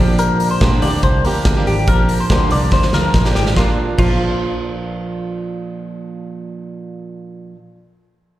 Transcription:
Already playing: A#2 D3
0.00 A#1 F3 A#3 D4 G4
0.19 A#4, closed hi-hat
0.40 open hi-hat
0.51 C5
0.61 A#1 A#2 D3 F3 A#3 D4 G4, kick, snare, closed hi-hat
0.82 D2 F3 A#3 D4 G4 D5, open hi-hat
1.03 C2 C5, kick, closed hi-hat
1.25 D2 F3 A#3 D4 G4 A#4, open hi-hat
1.45 D2, kick, snare, closed hi-hat
1.57 F3 A#3 D4 G4
1.67 G#1 G4, open hi-hat
1.88 A#1 F3 A#3 D4 G4 A#4, kick, closed hi-hat
2.09 open hi-hat
2.20 C5
2.30 D2 A#2 D3 F3 A#3 D4 G4, kick, snare, closed hi-hat
2.50 C2 F3 A#3 D4 G4 D5, open hi-hat
2.72 D2 C5, kick, snare
2.83 snare
2.93 D2 F3 A#3 D4 G4 A#4, snare
3.14 A#1, kick, snare
3.25 F3 A#3 D4 G4, snare
3.35 G#1 G4, snare
3.46 snare
3.56 A#1 A#2 F3 A#3 F4, kick, snare
3.60 D4 F4
3.98 A#1 A#2 F3 A#3 F4, kick, crash
4.02 D4 F4

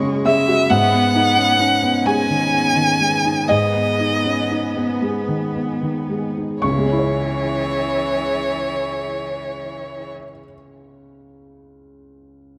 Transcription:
Already playing: F#2 C#3 G#3 C#4 E4 F#4 G#4 C#5 B5 C#6
0.02 C#3
0.25 G#3 E5
0.48 F#4
0.70 G#2 B3 D#4 G#4 B4 F#5
0.93 B3
1.15 B3 D#4
1.36 C#4
1.59 C#4 D#4
1.83 B3
2.05 G#3 G#5
2.30 D#3
2.54 B3
2.76 D#3
3.00 G#3
3.25 D#4
3.48 G#2 B3 D#5
3.74 B3
3.99 D#4
4.25 C#4
4.51 D#4
4.77 B3
5.02 G#3
5.28 D#3
5.55 B3
5.83 D#3
6.10 G#3
6.37 D#4
6.60 C#2 E3 E4 G#4 C#5 C#6
6.71 C#3
6.78 G#3
6.85 C#4
6.92 E4
6.99 C#5

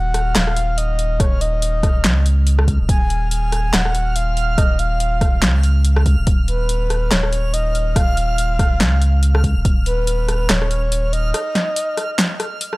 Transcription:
Already playing: D#1 F#5 F6
0.14 cross-stick, closed hi-hat
0.35 D#1 F5, cross-stick, snare, clap, closed hi-hat
0.47 cross-stick
0.57 closed hi-hat
0.78 D#5, closed hi-hat
0.99 closed hi-hat
1.20 D#1 C#5, kick, cross-stick, closed hi-hat
1.41 D#5, closed hi-hat
1.62 closed hi-hat
1.83 kick, cross-stick, closed hi-hat
2.04 C#2, snare, clap, closed hi-hat
2.26 closed hi-hat
2.47 closed hi-hat
2.59 cross-stick
2.68 kick, closed hi-hat
2.80 D#1
2.89 D#1 G#5, kick, closed hi-hat
3.10 closed hi-hat
3.31 G#5, closed hi-hat
3.52 cross-stick, closed hi-hat
3.73 D#1 F#5, cross-stick, snare, clap, closed hi-hat
3.85 cross-stick
3.95 closed hi-hat
4.16 F5, closed hi-hat
4.37 closed hi-hat
4.58 D#1 D#5, kick, cross-stick, closed hi-hat
4.79 F5, closed hi-hat
5.00 closed hi-hat
5.21 kick, cross-stick, closed hi-hat
5.42 C#2, snare, clap, closed hi-hat
5.63 closed hi-hat
5.85 closed hi-hat
5.96 cross-stick
6.06 kick, closed hi-hat
6.18 D#1
6.27 D#1, kick, closed hi-hat
6.48 B4, closed hi-hat
6.69 closed hi-hat
6.90 cross-stick, closed hi-hat
7.11 D#1 C#5, cross-stick, snare, clap, closed hi-hat
7.23 cross-stick
7.33 closed hi-hat
7.53 D#5, closed hi-hat
7.75 closed hi-hat
7.96 D#1 F5, kick, cross-stick, closed hi-hat
8.17 closed hi-hat
8.38 closed hi-hat
8.59 kick, cross-stick, closed hi-hat
8.80 C#2, snare, clap, closed hi-hat
9.02 closed hi-hat
9.23 closed hi-hat
9.35 cross-stick
9.44 kick, closed hi-hat
9.56 D#1
9.65 D#1, kick, closed hi-hat
9.86 B4, closed hi-hat
10.07 closed hi-hat
10.29 cross-stick, closed hi-hat
10.49 D#1 C#5, cross-stick, snare, clap, closed hi-hat
10.62 cross-stick
10.71 closed hi-hat
10.92 closed hi-hat
11.13 D#5, closed hi-hat
11.34 cross-stick, closed hi-hat
11.55 snare, closed hi-hat
11.76 closed hi-hat
11.97 cross-stick, closed hi-hat
12.19 snare, clap, closed hi-hat
12.40 cross-stick, closed hi-hat
12.61 closed hi-hat
12.73 cross-stick

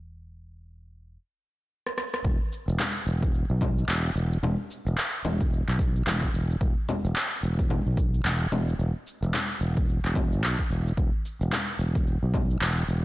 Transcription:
Already playing: E1
1.87 cross-stick
1.98 cross-stick
2.14 cross-stick
2.24 E1, kick, cabasa
2.52 cabasa
2.68 E1, cabasa
2.79 clap, low conga, cabasa
3.07 E1, cabasa
3.23 kick, cabasa
3.34 cabasa
3.50 B1
3.61 kick, low conga, cabasa
3.78 cabasa
3.88 E1, clap, cabasa
4.16 E1, cabasa
4.32 cabasa
4.43 E1, low conga, cabasa
4.71 cabasa
4.87 E1, cabasa
4.98 clap, cabasa
5.25 E1, low conga, cabasa
5.41 kick, cabasa
5.53 cabasa
5.68 B1, clap
5.79 kick, cabasa
5.96 cabasa
6.07 E1, clap, low conga, cabasa
6.23 kick
6.34 E1, cabasa
6.50 cabasa
6.61 E1, kick, cabasa
6.89 low conga, cabasa
7.05 E1, cabasa
7.16 clap, cabasa
7.43 E1, cabasa
7.59 kick, cabasa
7.70 low conga, cabasa
7.86 B1
7.97 kick, cabasa
8.14 cabasa
8.25 E1, clap, cabasa
8.52 E1, low conga, cabasa
8.69 cabasa
8.79 E1, cabasa
9.07 cabasa
9.23 E1, cabasa
9.34 clap, low conga, cabasa
9.61 E1, cabasa
9.77 kick, cabasa
9.89 cabasa
10.05 E1, clap
10.15 kick, low conga, cabasa
10.33 cabasa
10.43 B1, clap, cabasa
10.59 kick
10.70 E1, cabasa
10.87 cabasa
10.97 E1, kick, cabasa
11.25 cabasa
11.41 E1, cabasa
11.52 clap, low conga, cabasa
11.79 E1, cabasa
11.95 kick, cabasa
12.07 cabasa
12.23 B1
12.34 kick, low conga, cabasa
12.50 cabasa
12.61 E1, clap, cabasa
12.88 E1, cabasa

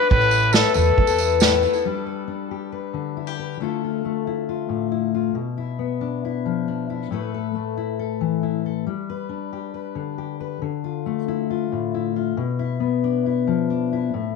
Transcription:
0.00 D4 F4
0.10 A1 A2 A3 B3 E4 A4 B4, kick
0.21 tambourine
0.31 tambourine
0.42 tambourine
0.53 A2 A3 B3 E4 A4, snare, tambourine
0.64 tambourine
0.74 E2 A3 B3 E4 A4, tambourine
0.86 tambourine
0.98 E2, kick
1.07 B3 E4 A4, tambourine
1.18 A3 B3 E4 A4, tambourine
1.30 tambourine
1.40 A2 A3 B3 E4 A4, snare, tambourine
1.63 A3 B3 E4 A4, tambourine
1.73 B3 E4 A4, tambourine
1.85 G3 D4 G4 B4
2.06 B4
2.28 D4
2.51 G4
2.72 B4
2.94 D3
3.17 E4
3.27 G4
3.39 B4
3.60 D3 A3 E4 F4 A4
3.84 F4
4.05 A3
4.27 E4
4.49 F4
4.69 A2
4.92 E4
5.14 F4
5.35 B2
5.58 E4
5.79 B3
6.01 D4
6.25 E4
6.46 F3
6.68 D4
6.90 E4
7.11 A2 A3 E4 A4 B4
7.34 A4
7.55 A3
7.77 E4
7.99 A4
8.21 E3
8.43 E4
8.66 A4
8.87 G3
9.10 B4
9.29 D4
9.53 G4
9.74 B4
9.95 D3
10.18 G4
10.40 B4
10.62 D3
10.84 F4
11.06 A3
11.28 E4
11.50 F4
11.72 A2
11.95 E4
12.16 F4
12.37 B2
12.59 E4
12.80 B3
13.04 D4
13.26 E4
13.47 F3
13.70 D4
13.93 E4
14.14 A2

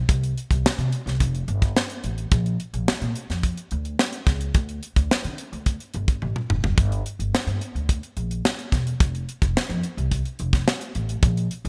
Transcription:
0.09 C2, kick, closed hi-hat
0.24 closed hi-hat
0.38 closed hi-hat
0.51 C2, kick, closed hi-hat
0.64 muted upright bass stroke, snare
0.78 C3, closed hi-hat
0.92 closed hi-hat
1.06 C2, snare, closed hi-hat
1.20 F1, kick, closed hi-hat
1.35 closed hi-hat
1.48 G1, closed hi-hat
1.62 kick, closed hi-hat
1.77 snare
1.90 closed hi-hat
2.04 A1, closed hi-hat
2.18 closed hi-hat
2.32 A#1, kick, closed hi-hat
2.46 closed hi-hat
2.60 closed hi-hat
2.73 A#1, closed hi-hat
2.88 muted upright bass stroke, snare
3.01 A#2, closed hi-hat
3.16 closed hi-hat
3.30 F2, snare, closed hi-hat
3.43 kick, closed hi-hat
3.57 closed hi-hat
3.71 D2, closed hi-hat
3.85 closed hi-hat
3.99 snare
4.13 closed hi-hat
4.27 C#2, kick, snare, closed hi-hat
4.41 closed hi-hat
4.54 D2, kick, closed hi-hat
4.69 closed hi-hat
4.83 closed hi-hat
4.96 D2, kick, closed hi-hat
5.11 muted upright bass stroke, snare
5.24 D3, closed hi-hat
5.38 closed hi-hat
5.53 D2, closed hi-hat
5.66 kick, closed hi-hat
5.80 closed hi-hat
5.94 G1, closed hi-hat
6.08 kick, closed hi-hat
6.22 A1, high tom
6.36 mid tom
6.50 F1, mid tom
6.64 F#1, floor tom
6.78 G1, kick, closed hi-hat
6.92 closed hi-hat
7.06 closed hi-hat
7.19 G1, closed hi-hat
7.33 muted upright bass stroke, snare
7.47 G2, closed hi-hat
7.61 closed hi-hat
7.75 D2, closed hi-hat
7.89 kick, closed hi-hat
8.03 closed hi-hat
8.17 A#1, closed hi-hat
8.31 closed hi-hat
8.45 snare
8.59 closed hi-hat
8.72 E1, kick, snare, closed hi-hat
8.87 closed hi-hat
9.00 F1, kick, closed hi-hat
9.15 closed hi-hat
9.29 closed hi-hat
9.42 F1, kick, closed hi-hat
9.56 muted upright bass stroke, snare
9.69 F2, closed hi-hat
9.83 closed hi-hat
9.97 C2, closed hi-hat
10.12 kick, closed hi-hat
10.25 closed hi-hat
10.39 F1, closed hi-hat
10.53 kick, snare, closed hi-hat
10.68 snare
10.81 closed hi-hat
10.95 A1, closed hi-hat
11.09 closed hi-hat
11.23 A#1, kick, closed hi-hat
11.37 closed hi-hat
11.51 closed hi-hat
11.65 A#1, closed hi-hat

